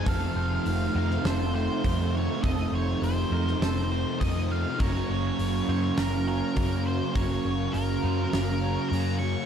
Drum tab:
HH |o---o---o---o---|o---o---o---o---|o---o---o---o---|o---o---o---o---|
SD |-------oo-------|-------oo-------|--------o-------|--------o-------|
BD |o-----------o---|o-----------o---|o-----------o---|o---------------|